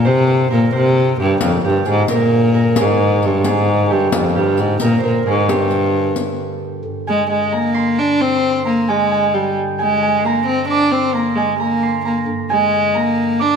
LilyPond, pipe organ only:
\new Staff \with { instrumentName = "Pipe organ" } { \clef bass \time 6/8 \key g \phrygian \tempo 4. = 88 <g, d>2. | <g, d>2.~ | <g, d>2.~ | <g, d>2.~ |
<g, d>2. | <g, d>2.~ | <g, d>2.~ | <g, d>2.~ |
<g, d>2. | <g, d>2. | }